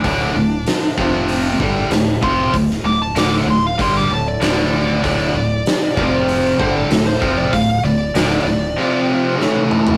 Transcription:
Already playing: lead electric guitar D4
0.04 fretless electric bass D1, steel-string acoustic guitar D2 A2 D3, kick, open hi-hat
0.35 fretless electric bass D1, steel-string acoustic guitar D2 A2
0.66 steel-string acoustic guitar D2 A2, snare, open hi-hat
0.97 fretless electric bass F1, steel-string acoustic guitar F2 C3 F3, kick
1.28 steel-string acoustic guitar F2 C3, open hi-hat
1.60 fretless electric bass G1, steel-string acoustic guitar D2 A2 D3, overdriven electric guitar G2 G3, kick
1.90 fretless electric bass D1, steel-string acoustic guitar D2 A2 D3, snare, open hi-hat
2.21 fretless electric bass F1, steel-string acoustic guitar D2 A2, overdriven electric guitar F2 C3 F3, lead electric guitar C6, kick
2.53 fretless electric bass D1, steel-string acoustic guitar D2 A2, kick, open hi-hat
2.71 snare
2.83 fretless electric bass D1, steel-string acoustic guitar D2 A2, lead electric guitar D6
3.02 lead electric guitar A5
3.14 fretless electric bass D1, steel-string acoustic guitar D2 A2 D3, snare, open hi-hat
3.18 lead electric guitar D6
3.46 fretless electric bass D1, steel-string acoustic guitar D2 A2
3.50 lead electric guitar C6
3.67 lead electric guitar F5
3.78 fretless electric bass G1, steel-string acoustic guitar D2 A2, overdriven electric guitar G2 D3 G3, lead electric guitar C6, kick, open hi-hat
3.97 lead electric guitar D6
4.09 fretless electric bass D1, steel-string acoustic guitar D2 A2 D3
4.13 lead electric guitar A5
4.28 lead electric guitar D5
4.40 fretless electric bass D1, steel-string acoustic guitar D2 A2, overdriven electric guitar D3, lead electric guitar D5, snare, open hi-hat
4.74 steel-string acoustic guitar D2 A2
5.04 fretless electric bass D1, steel-string acoustic guitar D2 A2 D3, kick, open hi-hat
5.34 fretless electric bass D1, steel-string acoustic guitar D2 A2
5.66 steel-string acoustic guitar D2 A2, snare, open hi-hat
5.97 fretless electric bass F1, steel-string acoustic guitar F2 C3 F3, kick
6.28 steel-string acoustic guitar F2 C3, open hi-hat
6.59 fretless electric bass G1, steel-string acoustic guitar D2 A2 D3, overdriven electric guitar G2 G3, lead electric guitar C5, kick
6.76 lead electric guitar A4
6.89 fretless electric bass D1, steel-string acoustic guitar D2 A2 D3, snare, open hi-hat
7.06 lead electric guitar C5
7.21 fretless electric bass F1, steel-string acoustic guitar D2 A2, overdriven electric guitar F2 C3 F3, kick
7.38 lead electric guitar D5
7.52 fretless electric bass D1, steel-string acoustic guitar D2 A2, lead electric guitar F5, kick, open hi-hat
7.83 fretless electric bass D1, steel-string acoustic guitar D2 A2, lead electric guitar D5
8.14 fretless electric bass D1, steel-string acoustic guitar D2 A2 D3, snare, open hi-hat
8.45 fretless electric bass D1, steel-string acoustic guitar D2 A2
8.77 steel-string acoustic guitar F2 C3 F3
9.09 steel-string acoustic guitar F2 C3 F3
9.40 steel-string acoustic guitar A2 E3 A3, snare
9.56 high tom
9.71 steel-string acoustic guitar A2 E3, mid tom
9.87 floor tom

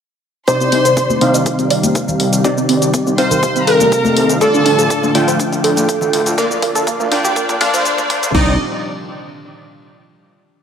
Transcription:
0.48 supersaw synth C3 C4 D#4 D5, analog synth pad C3 D#3 G3 G4 D5, synth arpeggio sound C5, digital synth lead C5, violin section C6, kick, closed hi-hat, shaker
0.61 analog synth bass C2, synth arpeggio sound C4, shaker
0.72 analog synth bass C2, synth arpeggio sound C4, open hi-hat
0.85 analog synth bass C2, synth arpeggio sound C5, closed hi-hat, shaker
0.97 synth arpeggio sound C4, kick, closed hi-hat, shaker
1.10 analog synth bass C2, synth arpeggio sound C4, high conga, shaker
1.21 analog synth bass C2, supersaw synth C3 C4 D#4 F5, synth arpeggio sound C4, open hi-hat
1.34 analog synth bass C2, synth arpeggio sound D#5, closed hi-hat, shaker
1.46 synth arpeggio sound C4, kick, closed hi-hat, shaker
1.59 analog synth bass A#1, synth arpeggio sound C4, closed hi-hat, shaker
1.70 analog synth bass A#1, synth arpeggio sound D5, open hi-hat
1.83 analog synth bass A#1, closed hi-hat, high conga, shaker
1.95 kick, closed hi-hat, shaker
2.08 analog synth bass C2, low conga, shaker
2.20 analog synth bass C2, open hi-hat
2.33 analog synth bass C2, closed hi-hat, shaker
2.44 supersaw synth C3 C4 D#4 D5, analog synth pad C4, synth arpeggio sound G4, kick, closed hi-hat, shaker
2.57 analog synth bass C2, synth arpeggio sound C4, shaker
2.69 analog synth bass D2, synth arpeggio sound C4, open hi-hat
2.82 analog synth bass C2, synth arpeggio sound G4, closed hi-hat, shaker
2.94 synth arpeggio sound C4, kick, closed hi-hat, shaker
3.07 analog synth bass C2, synth arpeggio sound C4, shaker
3.18 analog synth bass C2, supersaw synth C3 C4 D#4 F5, synth arpeggio sound C4, digital synth lead C5, violin section C6, kick, open hi-hat
3.31 analog synth bass C2, synth arpeggio sound A#4, closed hi-hat, low conga, shaker
3.43 synth arpeggio sound C4, kick, closed hi-hat, shaker
3.56 analog synth bass C2, synth arpeggio sound C4, closed hi-hat, shaker
3.67 analog synth bass C2, synth arpeggio sound A4, digital synth lead A#4, violin section A#5, open hi-hat
3.80 analog synth bass C2, closed hi-hat, high conga, shaker
3.92 kick, closed hi-hat, shaker
4.05 analog synth bass C2, high conga, shaker
4.17 analog synth bass C2, open hi-hat
4.29 analog synth bass C2, closed hi-hat, shaker
4.41 analog synth pad A2 D3 F3 D4 F4, supersaw synth D3 A3 F4 D5, synth arpeggio sound A4, digital synth lead A4, violin section A5, kick, closed hi-hat, shaker
4.54 analog synth bass D2, synth arpeggio sound D4, shaker
4.66 analog synth bass D2, synth arpeggio sound D4, open hi-hat
4.79 analog synth bass D2, synth arpeggio sound A4, closed hi-hat, shaker
4.90 synth arpeggio sound D4, kick, closed hi-hat, shaker
5.03 analog synth bass D2, synth arpeggio sound D4, high conga, shaker
5.15 analog synth bass D2, supersaw synth D3 A3 F4 G5, synth arpeggio sound D4, open hi-hat
5.28 analog synth bass D2, synth arpeggio sound C5, closed hi-hat, shaker
5.39 synth arpeggio sound D4, kick, closed hi-hat, shaker
5.52 analog synth bass C2, synth arpeggio sound D4, closed hi-hat, shaker
5.64 analog synth bass C2, synth arpeggio sound A4, open hi-hat
5.76 analog synth bass C2, closed hi-hat, high conga, shaker
5.89 kick, closed hi-hat, shaker
6.01 analog synth bass D2, low conga, shaker
6.13 analog synth bass D2, open hi-hat
6.26 analog synth bass D2, closed hi-hat, shaker
6.38 analog synth pad A#2 F3 D4 F4, supersaw synth D3 A#3 F4 D5, synth arpeggio sound A#4, kick, closed hi-hat, shaker
6.51 analog synth bass D2, synth arpeggio sound A#3, shaker
6.62 analog synth bass D2, synth arpeggio sound A#3, kick, open hi-hat
6.75 analog synth bass D2, synth arpeggio sound A4, closed hi-hat, shaker
6.87 synth arpeggio sound A#3, kick, closed hi-hat, shaker
7.00 analog synth bass D2, synth arpeggio sound A#3, high conga, shaker
7.12 analog synth bass D2, supersaw synth D3 A#3 F4 G5, synth arpeggio sound A#3, digital synth lead D4, violin section D5, kick, open hi-hat
7.24 analog synth bass D2, synth arpeggio sound G4, closed hi-hat, low conga, shaker
7.36 synth arpeggio sound A#3, kick, closed hi-hat, shaker
7.49 analog synth bass D2, synth arpeggio sound A#3, kick, closed hi-hat, shaker
7.61 analog synth bass D2, supersaw synth D3 A#3 F4 F5, synth arpeggio sound D4, digital synth lead D4, violin section D5, kick, open hi-hat
7.74 analog synth bass D2, supersaw synth D3 A#3 F4 C5, kick, closed hi-hat, high conga, shaker
7.85 kick, closed hi-hat, shaker
7.98 analog synth bass D2, kick, closed hi-hat, high conga, shaker
8.10 analog synth bass D2, kick, open hi-hat
8.23 analog synth bass D2, kick, closed hi-hat, shaker
8.35 analog synth bass C2, analog synth pad C3 D#3 G3 D4 G4, supersaw synth C4 D#4 D5, synth arpeggio sound D#4, digital synth lead D#4, violin section D#5, kick, crash

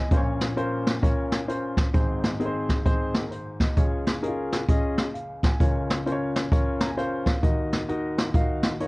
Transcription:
Already playing: upright piano D#5 G#5
0.11 upright piano A#1 A#2 C#4 F4 A#4 C5, kick, closed hi-hat
0.17 upright piano C#5
0.40 snare, closed hi-hat
0.56 upright piano C#4 F4 A#4 C5, closed hi-hat
0.87 snare, closed hi-hat
1.02 upright piano C#4 F4 A#4 C#5, kick, closed hi-hat
1.32 snare, closed hi-hat
1.48 upright piano C#4 F4 A#4 C5, closed hi-hat
1.77 kick, snare, closed hi-hat
1.94 upright piano G#1 G#2 C4 D#4 G#4 C5, kick, closed hi-hat
2.23 snare, closed hi-hat
2.40 upright piano C4 D#4 G#4 A#4, closed hi-hat
2.46 upright piano C5
2.69 kick, snare, closed hi-hat
2.85 upright piano C4 D#4 G#4 C5, kick, closed hi-hat
3.14 upright piano A#4, snare, closed hi-hat
3.31 upright piano C5, closed hi-hat
3.60 upright piano D#5, kick, snare, closed hi-hat
3.77 upright piano C#2 C#3 C#4 F4 G#4 C#5, kick, closed hi-hat
4.07 snare, closed hi-hat
4.22 upright piano C#4 D#4 G#4 A#4, closed hi-hat
4.28 upright piano F4
4.53 snare, closed hi-hat
4.68 upright piano C#4 F4 G#4 D#5, kick, closed hi-hat
4.98 snare, closed hi-hat
5.14 upright piano F5, closed hi-hat
5.43 upright piano G#5, kick, snare, closed hi-hat
5.60 upright piano C#2 C#3 C#4 F4 A#4 C#5, kick, closed hi-hat
5.90 snare, closed hi-hat
6.06 upright piano C#4 F4 A#4 C5, closed hi-hat
6.12 upright piano C#5
6.36 snare, closed hi-hat
6.52 upright piano C#4 F4 A#4 C#5, kick, closed hi-hat
6.80 upright piano A#5, snare, closed hi-hat
6.89 upright piano G#5
6.97 upright piano C#4 F4 A#4 C5 F5, closed hi-hat
7.26 upright piano F5, kick, snare, closed hi-hat
7.43 upright piano D#2 D#3 D#4 F#4 A#4 D#5, kick, closed hi-hat
7.72 snare, closed hi-hat
7.89 upright piano D#4 F#4 A#4 D#5, closed hi-hat
8.18 snare, closed hi-hat
8.34 upright piano D#4 F4 A#4 F5, kick, closed hi-hat
8.40 upright piano F#4
8.63 snare, closed hi-hat
8.80 upright piano D#4 F4 A#4 C#5, closed hi-hat

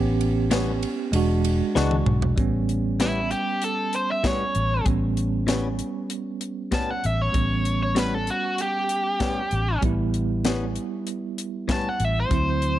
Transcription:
Already playing: fingered electric bass A1, tine electric piano B3 C#4 G4
0.21 ride
0.51 clean electric guitar A2 G3 B3 C#4, snare, ride
0.83 ride
1.12 fingered electric bass E1, tine electric piano G#3 D4 F#4, ride
1.45 ride
1.75 fingered electric bass C#2, clean electric guitar E3 G#3 D4 F#4, snare
1.91 high tom
2.06 fingered electric bass B1, mid tom
2.22 floor tom
2.36 fingered electric bass A1, tine electric piano G3 B3 C#4, kick, closed hi-hat
2.69 closed hi-hat
3.00 clean electric guitar A2 G3 B3 C#4, lead electric guitar E4, snare, closed hi-hat
3.31 lead electric guitar G4, closed hi-hat
3.62 lead electric guitar A4, closed hi-hat
3.93 lead electric guitar C5, closed hi-hat
4.11 lead electric guitar E5
4.24 clean electric guitar A2 G3 B3 C#4, lead electric guitar C#5, kick, snare, closed hi-hat
4.55 fingered electric bass A1, closed hi-hat
4.84 fingered electric bass A1, tine electric piano G3 B3 C#4, kick, closed hi-hat
5.17 closed hi-hat
5.47 clean electric guitar A2 G3 B3 C#4, snare, closed hi-hat
5.79 closed hi-hat
6.10 closed hi-hat
6.41 closed hi-hat
6.72 clean electric guitar A2 G3 B3 C#4, lead electric guitar A5, kick, snare, closed hi-hat
6.90 lead electric guitar F#5
7.04 fingered electric bass A1, lead electric guitar E5, closed hi-hat
7.21 lead electric guitar C#5
7.32 fingered electric bass A1, tine electric piano G3 B3 C#4, kick, closed hi-hat
7.65 closed hi-hat
7.83 lead electric guitar C#5
7.95 clean electric guitar A2 G3 B3 C#4, lead electric guitar B4, snare, closed hi-hat
8.14 lead electric guitar A4
8.27 lead electric guitar F#4, closed hi-hat
8.58 lead electric guitar G4, closed hi-hat
8.89 closed hi-hat
9.20 clean electric guitar A2 G3 B3 C#4, kick, snare, closed hi-hat
9.51 fingered electric bass A1, closed hi-hat
9.81 fingered electric bass A1, tine electric piano G3 B3, kick, closed hi-hat
9.85 tine electric piano E4
10.14 closed hi-hat
10.45 clean electric guitar A2 G3 B3 C#4, snare, closed hi-hat
10.75 closed hi-hat
11.07 closed hi-hat
11.38 closed hi-hat
11.68 clean electric guitar A2 G3 B3 C#4, kick, snare, closed hi-hat
11.72 lead electric guitar A5
11.89 lead electric guitar F#5
12.00 fingered electric bass A1, closed hi-hat
12.05 lead electric guitar E5
12.20 lead electric guitar C5
12.29 fingered electric bass D2, tine electric piano F#3 C4 E4, kick, closed hi-hat
12.62 closed hi-hat

